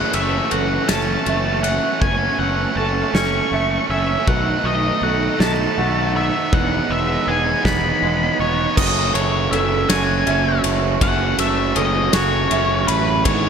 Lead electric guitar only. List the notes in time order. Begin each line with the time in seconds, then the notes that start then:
Already playing: F#5
0.14 E5
0.51 F#5
0.89 A5
1.63 F#5
2.01 G#5
2.40 F#5
2.77 A5
3.14 C#6
3.90 E5
4.28 F#5
4.66 D#5
5.03 F#5
5.40 A5
6.17 E5
6.54 F#5
6.92 E5
7.28 G#5
7.66 B5
8.40 C#5
8.77 D#5
9.14 C#5
9.51 E5
9.89 G#5
11.03 F#5
11.40 E5
11.77 D#5
12.14 C#5
12.87 B4
13.24 C#5